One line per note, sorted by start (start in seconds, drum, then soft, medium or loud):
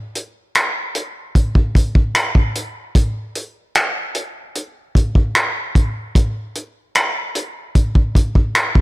0.15 closed hi-hat medium
0.55 finger snap loud
0.55 closed hi-hat medium
0.95 closed hi-hat medium
1.35 kick medium
1.35 closed hi-hat medium
1.55 kick medium
1.75 kick medium
1.75 closed hi-hat medium
1.95 kick medium
2.15 finger snap loud
2.15 closed hi-hat medium
2.35 kick medium
2.55 closed hi-hat medium
2.95 kick loud
2.95 closed hi-hat medium
3.35 closed hi-hat medium
3.75 finger snap loud
3.75 closed hi-hat medium
4.15 closed hi-hat medium
4.55 closed hi-hat medium
4.95 kick medium
4.95 closed hi-hat medium
5.15 kick medium
5.35 finger snap loud
5.35 closed hi-hat medium
5.75 kick medium
5.75 closed hi-hat medium
6.15 kick loud
6.15 closed hi-hat medium
6.55 closed hi-hat medium
6.95 finger snap loud
6.95 closed hi-hat medium
7.35 closed hi-hat medium
7.75 kick medium
7.75 closed hi-hat medium
7.95 kick medium
8.15 kick medium
8.15 closed hi-hat medium
8.35 kick medium
8.55 finger snap loud
8.55 closed hi-hat medium
8.75 kick medium